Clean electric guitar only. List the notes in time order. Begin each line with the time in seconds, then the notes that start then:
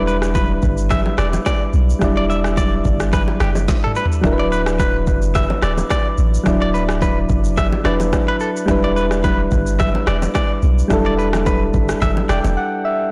0.07 B4
0.35 B4
0.91 E5
1.18 D5
1.46 D5
2.17 D5
2.30 E5
2.57 D5
3.13 B4
3.41 G4
3.84 A4
3.96 B4
4.39 D5
4.52 B4
4.80 B4
5.35 E5
5.63 D5
5.91 D5
6.62 D5
6.74 B4
7.02 B4
7.58 E5
7.85 D5
8.28 B4
8.41 A4
8.84 D5
8.96 B4
9.24 B4
9.80 E5
10.08 D5
10.35 D5
11.06 D5
11.19 B4
11.46 B4
12.02 E5
12.30 D5